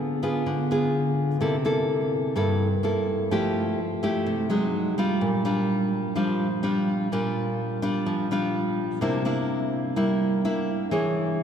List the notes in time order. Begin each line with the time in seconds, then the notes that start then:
Already playing: D3 B3 F4 G#4
0.23 B3 F4 G#4
0.46 D3
0.71 B3 F4 G#4
1.41 C3 A#3 E4 A4
1.65 A#3 E4 A4
2.36 G2 A#3 E4 A4
2.83 A#3 E4 A4
3.31 F3 A3 E4 G4
4.03 A3 E4 G4
4.26 C3
4.50 F#3 G#3 D#4
4.98 G3 D4 F4
5.21 A#2
5.45 G3 D4 F4
6.16 F3 G3 D4 F4
6.63 G3 D4 F4
7.12 A#2 G3 D4 F4
7.82 G3 D4 F4
8.06 F3
8.31 G3 D4 F4
9.01 C3 A#3 D4 E4
9.25 A#3 D4 E4
9.96 G3 A#3 D4 E4
10.45 A#3 D4 E4
10.91 E3 D4 G#4 C#5